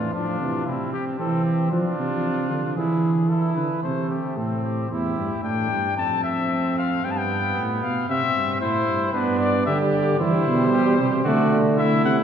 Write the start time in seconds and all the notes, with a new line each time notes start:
Already playing: A2 E3 D4 F4
0.13 A2 F3 D4 F4
0.41 C3 E3
0.67 C3 C4 E4
0.93 G4
1.19 E3 C4 A4
1.45 G4
1.72 F3 D4 F4
1.99 C3
2.51 D3
2.76 E3 E4 G#4
3.29 E4 A4
3.55 D3 B4
3.83 C3 A3 C5
4.10 G4
4.37 A2 C4 A4
4.63 G4
4.90 E2 E4 G4
5.18 G2
5.43 A2 D4 G5
5.70 G2
5.97 F2 C4 A5
6.24 E5
6.78 F5
7.04 G2 B3 G5
7.11 A5
7.18 G5
7.57 A2
7.82 B2 F5
8.09 C3 C4 E5
8.35 G2
8.60 A2 E4 C5
8.88 G2
9.13 G2 B3 D4 B4
9.39 D5
9.66 D3 G3 G4 E5
9.92 D5
10.20 E3 G3 E4 C5
10.47 B2
10.73 G4
10.97 C3 G4
11.23 D3 A3 F#4 D5
11.78 A3 E4 E5
12.05 C3 F#5